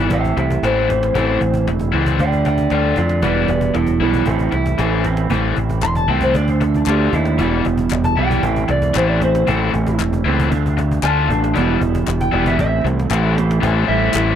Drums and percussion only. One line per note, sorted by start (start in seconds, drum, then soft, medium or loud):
0.10 cajon bass medium
0.10 cajon bass loud
0.24 cajon bass medium
0.37 cajon slap medium
0.50 cajon bass medium
0.63 cajon slap medium
0.90 cajon bass medium
0.90 cajon slap medium
1.03 cajon slap medium
1.15 cajon bass loud
1.41 cajon bass medium
1.54 cajon bass medium
1.67 cajon slap medium
1.79 cajon bass medium
2.06 cajon bass medium
2.19 cajon bass loud
2.32 cajon bass medium
2.45 cajon bass medium
2.45 cajon slap medium
2.58 cajon bass medium
2.70 cajon slap medium
2.96 cajon bass medium
3.09 cajon slap medium
3.22 cajon bass medium
3.22 cajon bass loud
3.48 cajon bass medium
3.61 cajon bass medium
3.75 cajon slap medium
3.87 cajon bass medium
4.14 cajon bass medium
4.26 cajon bass medium
4.26 cajon bass loud
4.39 cajon bass medium
4.52 cajon slap medium
4.66 cajon bass medium
4.79 cajon slap medium
5.04 cajon bass medium
5.04 cajon slap medium
5.17 cajon slap medium
5.30 cajon bass medium
5.30 cajon bass loud
5.56 cajon bass medium
5.70 cajon bass medium
5.82 cajon slap medium
5.82 clap loud
5.95 cajon bass medium
6.21 cajon bass medium
6.34 cajon bass medium
6.34 cajon bass loud
6.48 cajon bass medium
6.61 cajon bass medium
6.61 cajon slap medium
6.74 cajon bass medium
6.86 cajon slap medium
6.86 clap medium
7.13 cajon bass medium
7.25 cajon slap medium
7.39 cajon bass loud
7.65 cajon bass medium
7.78 cajon bass medium
7.91 cajon slap medium
7.91 clap medium
8.04 cajon bass medium
8.31 cajon bass medium
8.43 cajon bass loud
8.56 cajon bass medium
8.68 cajon slap medium
8.82 cajon bass medium
8.95 cajon slap medium
8.95 clap medium
9.21 cajon bass medium
9.21 cajon slap medium
9.35 cajon slap medium
9.47 cajon bass loud
9.74 cajon bass medium
9.87 cajon bass medium
10.00 cajon slap medium
10.00 clap medium
10.13 cajon bass medium
10.40 cajon bass loud
10.52 cajon bass loud
10.52 cajon bass medium
10.66 cajon bass medium
10.78 cajon bass medium
10.78 cajon slap medium
10.91 cajon bass medium
11.03 cajon slap medium
11.03 clap medium
11.30 cajon bass medium
11.44 cajon slap medium
11.56 cajon bass loud
11.81 cajon bass medium
11.95 cajon bass medium
12.08 cajon slap medium
12.08 clap loud
12.21 cajon bass medium
12.46 cajon bass medium
12.59 cajon bass loud
12.59 cajon slap medium
12.87 cajon slap medium
12.99 cajon slap medium
13.11 cajon slap loud
13.11 clap medium
13.38 cajon slap medium
13.51 cajon slap medium
13.63 cajon bass loud
14.03 cajon slap soft
14.14 cajon slap loud
14.14 clap loud